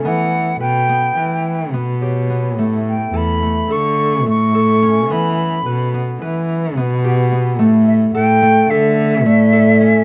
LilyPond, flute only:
\new Staff \with { instrumentName = "Flute" } { \time 9/8 \key e \dorian \tempo 4. = 72 fis''4 g''2 r4. | r8 g''8 b''4 cis'''4 cis'''4. | b''4. r2. | r8 e''8 g''4 e''2~ e''8 | }